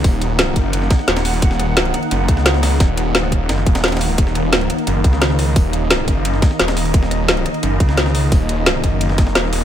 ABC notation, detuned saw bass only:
X:1
M:4/4
L:1/8
Q:1/4=174
K:Ebm
V:1 name="Detuned saw bass" clef=bass
E,,,3 G,,,2 z E,,,2 | E,,,3 z G,,, D,,3 | E,,,3 E,,, G,,, E,,,3 | E,,,3 z G,,, D,,3 |
E,,,3 G,,,2 z E,,,2 | E,,,3 z G,,, D,,3 | E,,,3 G,,,3 E,,,2 |]